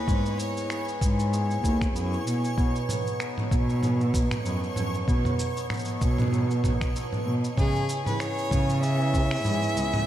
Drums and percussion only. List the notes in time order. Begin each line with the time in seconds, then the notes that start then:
0.08 kick, shaker
0.26 shaker
0.39 shaker
0.57 shaker
0.70 finger snap, shaker
0.88 shaker
1.01 kick, shaker
1.19 shaker
1.33 shaker
1.51 shaker
1.64 kick, shaker
1.81 finger snap, kick, shaker
1.96 shaker
2.13 shaker
2.27 shaker
2.44 shaker
2.58 kick, shaker
2.76 shaker
2.89 mid tom, shaker
3.07 shaker
3.20 finger snap, shaker
3.38 mid tom, shaker
3.51 kick, shaker
3.69 shaker
3.83 mid tom, shaker
4.01 shaker
4.14 kick, shaker
4.31 finger snap, mid tom, shaker
4.45 shaker
4.63 shaker
4.76 mid tom, shaker
4.94 shaker
5.08 kick, shaker
5.25 mid tom, shaker
5.39 shaker
5.57 shaker
5.70 finger snap, mid tom, shaker
5.74 shaker
5.76 shaker
5.79 shaker
5.81 shaker
5.85 shaker
5.88 shaker
6.01 kick, shaker
6.18 mid tom, shaker
6.22 mid tom
6.28 mid tom
6.33 mid tom, shaker
6.38 mid tom
6.43 mid tom
6.51 shaker
6.64 kick, mid tom, shaker
6.81 finger snap, kick, shaker
6.96 shaker
7.13 mid tom, shaker
7.44 shaker
7.58 kick, mid tom, shaker
7.76 shaker
7.89 shaker
8.06 mid tom, shaker
8.20 finger snap, shaker
8.38 shaker
8.51 kick, mid tom, shaker
8.70 shaker
8.83 shaker
9.01 shaker
9.14 kick, shaker
9.31 finger snap, shaker
9.34 shaker
9.36 shaker
9.38 shaker
9.40 shaker
9.42 shaker
9.44 mid tom, shaker
9.46 shaker
9.63 shaker
9.77 shaker
9.94 mid tom, shaker